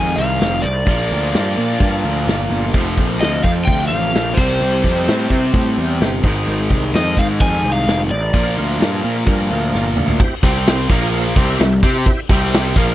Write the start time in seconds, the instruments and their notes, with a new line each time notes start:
Already playing: picked electric bass F2, distorted electric guitar G#2 D#3 G#3, electric slide guitar G#5
0.16 picked electric bass C2, tonewheel organ C4 D#4 G#4 C5, electric slide guitar F5
0.40 picked electric bass F1, tonewheel organ C4 D#4 G#4 C5, snare, open hi-hat
0.62 picked electric bass C2, tonewheel organ C4 D#4 G#4 C5, electric slide guitar D5
0.86 picked electric bass A#1, distorted electric guitar A#2 F3 A#3, tonewheel organ D4 F4 A#4 D5, kick, open hi-hat
1.11 picked electric bass D2, tonewheel organ D4 F4 A#4 D5
1.33 picked electric bass G2, tonewheel organ D4 F4 A#4 C5, snare, open hi-hat
1.57 picked electric bass A#2, tonewheel organ D4 F4 A#4 D5
1.80 picked electric bass G2, tonewheel organ D4 F4 A#4 D5, kick, open hi-hat
2.04 picked electric bass D2, tonewheel organ D4 F4 A#4 D5
2.27 picked electric bass G1, tonewheel organ D4 F4 A#4 D5, snare, open hi-hat
2.51 picked electric bass G1, tonewheel organ D4 F4 A#4 D5
2.74 picked electric bass F1, distorted electric guitar F2 C3 F3, tonewheel organ C4 F4 A4 C5, kick, open hi-hat
2.97 picked electric bass A#1, tonewheel organ C4 F4 A4 C5, kick
3.21 picked electric bass D2, tonewheel organ C4 F4 A4 C5, electric slide guitar D#5, snare, open hi-hat
3.43 picked electric bass F2, tonewheel organ C4 F4 A4 C5, electric slide guitar F5, kick
3.65 picked electric bass D2, tonewheel organ C4 F4 A4 C5, electric slide guitar G5, kick, open hi-hat
3.88 picked electric bass A1, tonewheel organ C4 F4 A4 C5, electric slide guitar F5
4.14 picked electric bass A#1, tonewheel organ C4 F4 A4 C5, snare, open hi-hat
4.34 picked electric bass C2, distorted electric guitar C3, electric slide guitar C5, kick
4.39 distorted electric guitar G3 C4, tonewheel organ C4 E4 G4 C5
4.61 picked electric bass C2, open hi-hat
4.84 picked electric bass F2, tonewheel organ C4 E4 G4 C5, kick
5.07 picked electric bass A2, tonewheel organ C4 E4 G4 C5, snare, open hi-hat
5.30 picked electric bass C3, tonewheel organ C4 E4 G4 C5, kick
5.54 picked electric bass A2, tonewheel organ C4 E4 G4 C5, kick, open hi-hat
5.78 picked electric bass E2, tonewheel organ C4 E4 G4 C5
6.00 picked electric bass G1, tonewheel organ C4 E4 G4 C5, snare, open hi-hat
6.23 picked electric bass G#1, distorted electric guitar G#2 D#3 G#3, tonewheel organ C4 D#4 G#4 C5, kick
6.47 picked electric bass G#1, open hi-hat
6.70 picked electric bass C2, tonewheel organ C4 D#4 G#4 C5, kick
6.94 picked electric bass F2, tonewheel organ C4 D#4 G#4 C5, electric slide guitar D#5, snare, open hi-hat
7.17 picked electric bass G#2, tonewheel organ C4 D#4 G#4 C5, electric slide guitar F5, kick
7.40 picked electric bass F2, tonewheel organ C4 D#4 G#4 C5, electric slide guitar G#5, kick, open hi-hat
7.64 picked electric bass C2, tonewheel organ C4 D#4 G#4 C5
7.72 electric slide guitar F5
7.87 picked electric bass F1, tonewheel organ C4 D#4 G#4 C5, snare, open hi-hat
8.10 picked electric bass A1, tonewheel organ C4 D#4 G#4 C5, electric slide guitar D5
8.34 picked electric bass A#1, distorted electric guitar A#2 F3 A#3, tonewheel organ A#3 D4 F4 A#4, kick, open hi-hat
8.57 picked electric bass D2, tonewheel organ A#3 D4 F4 A#4
8.80 picked electric bass G2, tonewheel organ A#3 D4 F4 A#4, snare, open hi-hat
9.04 picked electric bass A#2, tonewheel organ A#3 D4 F4 A#4
9.26 picked electric bass G2, tonewheel organ A#3 D4 F4 A#4, kick, open hi-hat
9.51 picked electric bass D2, tonewheel organ A#3 D4 F4 A#4
9.73 picked electric bass G1, tonewheel organ A#3 D4 F4 A#4, snare
9.97 picked electric bass D2, tonewheel organ A#3 D4 F4 A#4, mid tom
10.08 floor tom
10.20 tonewheel organ C4 E4 G4 C5, kick, crash
10.43 picked electric bass C2, distorted electric guitar C3 G3 C4, tonewheel organ C4 E4 G4 C5, kick, open hi-hat
10.66 tonewheel organ C4 E4 G4 C5, snare, open hi-hat
10.89 picked electric bass A#1, distorted electric guitar A#2 F3 A#3, tonewheel organ A#3 F4 A#4 F5, kick, crash
11.36 picked electric bass C2, distorted electric guitar C3 G3 C4, tonewheel organ E4 G4 C5 E5, kick, open hi-hat
11.59 picked electric bass C2, distorted electric guitar C3 G3, snare, open hi-hat
11.83 picked electric bass C3, distorted electric guitar C4 G4 C5, tonewheel organ E4 G4 C5 E5, kick, open hi-hat
12.06 tonewheel organ E4 G4 C5 E5, kick, open hi-hat
12.29 picked electric bass C2, distorted electric guitar C3 G3 C4, tonewheel organ E4 G4 C5 E5, kick, open hi-hat
12.53 tonewheel organ E4 G4 C5 E5, snare, open hi-hat
12.76 picked electric bass A#1, distorted electric guitar A#2 F3 A#3, tonewheel organ A#3 F4 A#4 F5, kick, open hi-hat